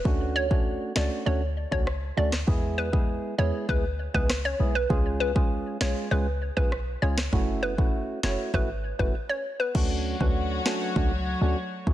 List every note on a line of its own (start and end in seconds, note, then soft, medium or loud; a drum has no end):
0.05 0.77 D2 loud
0.05 0.47 A3 loud
0.05 0.47 C#4 medium
0.05 0.47 D4 medium
0.05 0.47 F#4 loud
0.05 kick loud
0.36 0.47 C#5 medium
0.50 0.92 A3 medium
0.50 0.93 C#4 medium
0.50 0.93 D4 medium
0.50 0.93 F#4 medium
0.50 kick loud
0.96 1.09 C#2 medium
0.96 1.24 A3 medium
0.96 1.24 C#4 medium
0.96 1.24 D4 medium
0.96 1.24 F#4 medium
0.96 1.07 D5 medium
0.96 cross-stick medium
0.96 snare loud
1.26 1.66 D2 loud
1.26 1.42 A3 loud
1.26 1.42 C#4 medium
1.26 1.42 D4 medium
1.26 1.42 F#4 loud
1.26 1.38 C#5 medium
1.71 2.12 C#2 medium
1.71 1.87 A3 medium
1.71 1.87 C#4 medium
1.71 1.87 D4 medium
1.71 1.87 F#4 medium
1.71 1.83 C#5 medium
1.71 kick medium
1.87 cross-stick loud
2.17 2.44 D2 loud
2.17 2.33 A3 medium
2.17 2.33 C#4 medium
2.17 2.33 D4 medium
2.17 2.33 F#4 medium
2.17 2.29 D5 medium
2.32 cross-stick loud
2.32 snare loud
2.47 3.20 E2 loud
2.47 2.89 G#3 loud
2.47 2.89 B3 medium
2.47 2.90 E4 medium
2.47 2.90 G#4 loud
2.47 kick loud
2.78 2.89 B4 medium
2.92 3.35 G#3 medium
2.92 3.35 B3 medium
2.92 3.35 E4 medium
2.92 3.35 G#4 medium
2.92 kick loud
3.38 3.52 E2 medium
3.38 3.66 G#3 medium
3.38 3.66 B3 medium
3.38 3.67 E4 medium
3.38 3.67 G#4 medium
3.38 3.50 C#5 medium
3.69 4.08 D2 loud
3.69 3.84 G#3 medium
3.69 3.84 B3 medium
3.69 3.85 E4 medium
3.69 3.85 G#4 loud
3.69 3.80 B4 medium
3.69 kick medium
4.14 4.54 C#2 medium
4.14 4.30 G#3 medium
4.14 4.30 B3 medium
4.14 4.30 E4 medium
4.14 4.30 G#4 medium
4.14 4.25 B4 medium
4.14 kick medium
4.30 cross-stick loud
4.30 snare loud
4.45 4.56 C#5 medium
4.59 4.86 B1 medium
4.59 4.75 G#3 medium
4.59 4.75 B3 medium
4.59 4.75 E4 medium
4.59 4.75 G#4 medium
4.75 4.86 B4 medium
4.90 5.62 C#2 loud
4.90 5.32 G#3 loud
4.90 5.32 C#4 medium
4.90 5.32 F4 medium
4.90 5.32 G#4 loud
4.90 kick loud
5.20 5.31 B4 medium
5.35 5.77 G#3 medium
5.35 5.77 C#4 medium
5.35 5.78 F4 medium
5.35 5.78 G#4 medium
5.35 kick loud
5.81 5.94 B1 medium
5.81 6.09 G#3 medium
5.81 6.09 C#4 medium
5.81 6.09 F4 medium
5.81 6.09 G#4 medium
5.81 5.92 C#5 medium
5.81 cross-stick medium
5.81 snare loud
6.11 6.51 C#2 loud
6.11 6.27 G#3 medium
6.11 6.27 C#4 medium
6.11 6.27 F4 medium
6.11 6.27 G#4 loud
6.11 6.22 B4 medium
6.57 6.96 B1 medium
6.57 6.72 G#3 medium
6.57 6.72 C#4 medium
6.57 6.72 F4 medium
6.57 6.72 G#4 medium
6.57 6.68 B4 medium
6.57 kick medium
6.72 cross-stick medium
7.02 7.29 C#2 medium
7.02 7.18 G#3 medium
7.02 7.18 C#4 medium
7.02 7.18 F4 medium
7.02 7.18 G#4 medium
7.02 7.13 C#5 medium
7.18 cross-stick medium
7.18 snare loud
7.32 8.05 F#1 loud
7.32 7.74 A3 loud
7.32 7.74 C#4 medium
7.32 7.75 E4 medium
7.32 7.75 F#4 loud
7.32 kick loud
7.63 7.74 B4 medium
7.78 8.20 A3 medium
7.78 8.20 C#4 medium
7.78 8.20 E4 medium
7.78 8.20 F#4 medium
7.78 kick loud
8.23 8.37 F#1 loud
8.23 8.51 A3 medium
8.23 8.51 C#4 medium
8.23 8.51 E4 medium
8.23 8.52 F#4 medium
8.23 8.34 C#5 medium
8.23 cross-stick medium
8.23 snare loud
8.54 8.93 G#1 loud
8.54 8.69 A3 medium
8.54 8.69 C#4 medium
8.54 8.69 E4 medium
8.54 8.69 F#4 loud
8.54 8.65 B4 medium
8.54 kick medium
8.99 9.13 F#1 medium
8.99 9.14 A3 medium
8.99 9.14 C#4 medium
8.99 9.15 E4 medium
8.99 9.15 F#4 medium
8.99 9.10 B4 medium
8.99 kick medium
9.29 9.41 C#5 medium
9.60 9.71 B4 medium
9.75 10.14 D2 loud
9.75 11.93 F#3 medium
9.75 10.17 A3 loud
9.75 11.93 A3 medium
9.75 10.17 C#4 medium
9.75 10.17 D4 medium
9.75 11.93 F#4 medium
9.75 10.17 F#4 loud
9.75 11.93 C#5 medium
9.75 kick loud
9.75 crash medium
10.20 10.60 D2 loud
10.20 10.62 A3 medium
10.20 10.62 C#4 medium
10.20 10.62 D4 medium
10.20 10.62 F#4 medium
10.20 kick loud
10.65 10.94 A3 medium
10.65 10.94 C#4 medium
10.65 10.94 D4 medium
10.65 10.94 F#4 medium
10.65 cross-stick medium
10.65 snare loud
10.96 11.36 C#2 loud
10.96 11.11 A3 medium
10.96 11.11 C#4 medium
10.96 11.12 D4 medium
10.96 11.12 F#4 loud
10.96 kick medium
11.41 11.55 D2 medium
11.41 11.57 A3 medium
11.41 11.57 C#4 medium
11.41 11.57 D4 medium
11.41 11.57 F#4 medium
11.87 11.93 B1 medium
11.87 11.93 A3 medium
11.87 11.93 C#4 medium
11.87 11.93 D4 medium
11.87 11.93 F#4 medium
11.87 kick loud